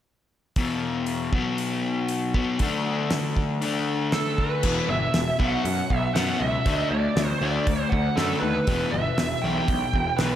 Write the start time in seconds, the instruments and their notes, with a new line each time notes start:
0.56 overdriven electric guitar E2 B2 E3, kick, open hi-hat
1.06 open hi-hat
1.33 overdriven electric guitar B2 F#3 B3, kick
1.58 open hi-hat
2.09 open hi-hat
2.34 overdriven electric guitar B2 F#3 B3, kick
2.59 overdriven electric guitar D3 A3 D4, kick, open hi-hat
3.10 snare, open hi-hat
3.37 kick
3.62 overdriven electric guitar D3 A3 D4, open hi-hat
4.12 lead electric guitar A4, snare, open hi-hat
4.38 lead electric guitar B4, kick
4.63 picked electric bass E1, overdriven electric guitar E2 B2 E3, kick, crash
4.89 picked electric bass G1, overdriven electric guitar E2 B2, lead electric guitar E5
5.14 picked electric bass E1, overdriven electric guitar E2 B2, snare, open hi-hat
5.39 picked electric bass B1, overdriven electric guitar B2 F#3 B3, lead electric guitar F#5, kick
5.64 picked electric bass F#2, overdriven electric guitar B2 F#3, open hi-hat
5.90 picked electric bass B1, overdriven electric guitar B2 F#3, kick
5.97 lead electric guitar E5
6.14 picked electric bass F#2, overdriven electric guitar B2 F#3 B3, lead electric guitar F#5, snare, open hi-hat
6.40 picked electric bass C#2, overdriven electric guitar B2 F#3, lead electric guitar E5
6.66 picked electric bass D2, overdriven electric guitar D3 A3 D4, kick, open hi-hat
6.75 lead electric guitar D#5
6.90 picked electric bass D2, overdriven electric guitar D3 A3, lead electric guitar D5
7.16 picked electric bass D2, overdriven electric guitar D3 A3, snare, open hi-hat
7.39 picked electric bass D2, overdriven electric guitar D3 A3 D4, lead electric guitar D5
7.67 picked electric bass D2, overdriven electric guitar D3 A3, kick, open hi-hat
7.82 lead electric guitar C5
7.90 picked electric bass D2, overdriven electric guitar D3 A3, lead electric guitar F#5, kick
8.16 picked electric bass F#2, overdriven electric guitar D3 A3 D4, lead electric guitar A4, snare, open hi-hat
8.40 picked electric bass D#2, overdriven electric guitar D3 A3, lead electric guitar B4
8.67 picked electric bass E1, overdriven electric guitar E2 B2 E3, kick, open hi-hat
8.91 picked electric bass G1, overdriven electric guitar E2 B2, lead electric guitar E5
9.18 picked electric bass E1, overdriven electric guitar E2 B2, snare, open hi-hat
9.42 picked electric bass B1, overdriven electric guitar E2 B2 E3, lead electric guitar G5
9.68 picked electric bass B1, overdriven electric guitar E2 B2, kick, open hi-hat
9.93 picked electric bass E1, overdriven electric guitar E2 B2, kick
10.17 picked electric bass B1, overdriven electric guitar E2, lead electric guitar B4, snare, open hi-hat
10.21 overdriven electric guitar B2 E3